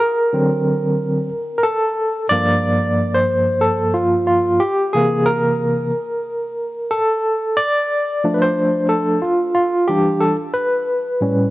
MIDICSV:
0, 0, Header, 1, 2, 480
1, 0, Start_track
1, 0, Tempo, 659341
1, 1442, Time_signature, 4, 2, 24, 8
1, 8375, End_track
2, 0, Start_track
2, 0, Title_t, "Tine electric piano"
2, 0, Program_c, 0, 4
2, 0, Note_on_c, 0, 70, 86
2, 239, Note_on_c, 0, 50, 57
2, 242, Note_on_c, 0, 54, 50
2, 247, Note_on_c, 0, 60, 62
2, 931, Note_off_c, 0, 50, 0
2, 933, Note_off_c, 0, 54, 0
2, 935, Note_off_c, 0, 60, 0
2, 1141, Note_off_c, 0, 70, 0
2, 1150, Note_on_c, 0, 70, 65
2, 1188, Note_on_c, 0, 69, 82
2, 1197, Note_off_c, 0, 70, 0
2, 1646, Note_off_c, 0, 69, 0
2, 1669, Note_on_c, 0, 74, 104
2, 1678, Note_on_c, 0, 43, 56
2, 1683, Note_on_c, 0, 53, 53
2, 1688, Note_on_c, 0, 58, 65
2, 2289, Note_on_c, 0, 72, 87
2, 2315, Note_off_c, 0, 74, 0
2, 2629, Note_on_c, 0, 69, 84
2, 2646, Note_off_c, 0, 72, 0
2, 2868, Note_on_c, 0, 65, 73
2, 2883, Note_off_c, 0, 69, 0
2, 3098, Note_off_c, 0, 65, 0
2, 3109, Note_on_c, 0, 65, 65
2, 3331, Note_off_c, 0, 43, 0
2, 3333, Note_off_c, 0, 53, 0
2, 3336, Note_off_c, 0, 58, 0
2, 3348, Note_on_c, 0, 67, 86
2, 3363, Note_off_c, 0, 65, 0
2, 3589, Note_on_c, 0, 68, 93
2, 3599, Note_on_c, 0, 48, 54
2, 3603, Note_off_c, 0, 67, 0
2, 3604, Note_on_c, 0, 52, 52
2, 3608, Note_on_c, 0, 58, 65
2, 3828, Note_on_c, 0, 70, 93
2, 3843, Note_off_c, 0, 68, 0
2, 4291, Note_off_c, 0, 48, 0
2, 4294, Note_off_c, 0, 52, 0
2, 4296, Note_off_c, 0, 58, 0
2, 5029, Note_on_c, 0, 69, 79
2, 5071, Note_off_c, 0, 70, 0
2, 5510, Note_on_c, 0, 74, 107
2, 5530, Note_off_c, 0, 69, 0
2, 5998, Note_on_c, 0, 53, 56
2, 6002, Note_on_c, 0, 57, 52
2, 6005, Note_on_c, 0, 62, 62
2, 6072, Note_on_c, 0, 71, 70
2, 6094, Note_off_c, 0, 74, 0
2, 6128, Note_on_c, 0, 72, 90
2, 6137, Note_off_c, 0, 71, 0
2, 6450, Note_off_c, 0, 72, 0
2, 6471, Note_on_c, 0, 69, 81
2, 6691, Note_off_c, 0, 53, 0
2, 6693, Note_off_c, 0, 57, 0
2, 6695, Note_off_c, 0, 62, 0
2, 6711, Note_on_c, 0, 65, 73
2, 6724, Note_off_c, 0, 69, 0
2, 6942, Note_off_c, 0, 65, 0
2, 6951, Note_on_c, 0, 65, 67
2, 7190, Note_on_c, 0, 67, 85
2, 7200, Note_on_c, 0, 52, 50
2, 7204, Note_off_c, 0, 65, 0
2, 7204, Note_on_c, 0, 55, 46
2, 7209, Note_on_c, 0, 62, 57
2, 7430, Note_on_c, 0, 69, 84
2, 7443, Note_off_c, 0, 67, 0
2, 7536, Note_off_c, 0, 52, 0
2, 7538, Note_off_c, 0, 55, 0
2, 7540, Note_off_c, 0, 69, 0
2, 7541, Note_off_c, 0, 62, 0
2, 7670, Note_on_c, 0, 71, 84
2, 8158, Note_on_c, 0, 45, 52
2, 8162, Note_on_c, 0, 55, 52
2, 8168, Note_on_c, 0, 61, 59
2, 8375, Note_off_c, 0, 45, 0
2, 8375, Note_off_c, 0, 55, 0
2, 8375, Note_off_c, 0, 61, 0
2, 8375, Note_off_c, 0, 71, 0
2, 8375, End_track
0, 0, End_of_file